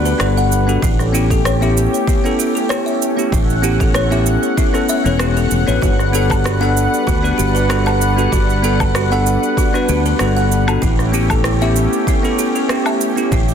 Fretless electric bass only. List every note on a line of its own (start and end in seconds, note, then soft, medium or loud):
0.00 0.12 D2 medium
0.20 0.76 G1 medium
0.83 1.86 A1 medium
3.33 4.36 A1 loud
5.05 5.45 E1 medium
5.51 5.63 E1 medium
5.68 5.78 A1 medium
5.82 6.86 G1 medium
7.08 7.31 D2 medium
7.39 8.26 G1 medium
8.33 9.36 G1 loud
9.89 10.12 D2 medium
10.20 10.76 G1 medium
10.82 11.86 A1 loud
13.32 13.54 A1 loud